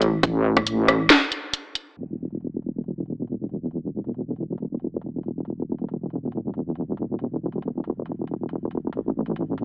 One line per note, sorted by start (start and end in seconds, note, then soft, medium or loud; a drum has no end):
0.00 1.09 A1 loud
0.00 closed hi-hat medium
0.23 kick loud
0.23 closed hi-hat medium
0.57 kick medium
0.57 cross-stick medium
0.57 closed hi-hat medium
0.67 closed hi-hat medium
0.88 cross-stick medium
0.88 closed hi-hat medium
1.10 snare loud
1.10 closed hi-hat medium
1.32 closed hi-hat medium
1.54 closed hi-hat medium
1.75 closed hi-hat medium
1.97 8.91 E1 medium
1.97 closed hi-hat medium
1.97 crash medium
2.31 closed hi-hat soft
2.41 closed hi-hat medium
2.62 closed hi-hat soft
2.84 closed hi-hat medium
3.06 closed hi-hat soft
3.27 closed hi-hat medium
3.49 closed hi-hat soft
3.71 closed hi-hat medium
4.04 closed hi-hat soft
4.14 closed hi-hat medium
4.36 closed hi-hat soft
4.58 closed hi-hat medium
4.80 closed hi-hat soft
5.01 closed hi-hat medium
5.23 closed hi-hat soft
5.45 closed hi-hat medium
5.78 closed hi-hat soft
5.89 closed hi-hat medium
6.10 closed hi-hat soft
6.32 closed hi-hat medium
6.54 closed hi-hat soft
6.75 closed hi-hat medium
6.97 closed hi-hat soft
7.19 closed hi-hat medium
7.52 closed hi-hat soft
7.62 closed hi-hat medium
7.84 closed hi-hat soft
8.06 closed hi-hat medium
8.27 closed hi-hat soft
8.49 closed hi-hat medium
8.71 closed hi-hat soft
8.93 9.65 A1 medium
8.93 closed hi-hat medium
9.26 closed hi-hat soft
9.36 closed hi-hat medium
9.58 closed hi-hat soft